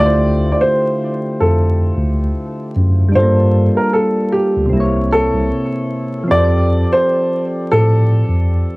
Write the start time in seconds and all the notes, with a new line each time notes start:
Already playing: D3 A3 E4
0.00 D2 F4 G4 D5
0.06 C5
0.52 D5
0.61 C5
1.41 F2 A4
1.97 D2
2.76 F#2
3.08 G3 D4
3.15 G2 F4 A4 C5
3.22 A#3
3.77 A#4
3.93 A4
4.32 G4
4.57 D2
4.66 C3 C4
4.73 C2 A#3 E4
4.80 C#5
5.13 A4
5.35 C2
6.24 F3
6.28 F2 C4 G4 D5
6.34 A4 C5
6.44 D5
6.92 C5
7.72 A2 A4
8.29 F2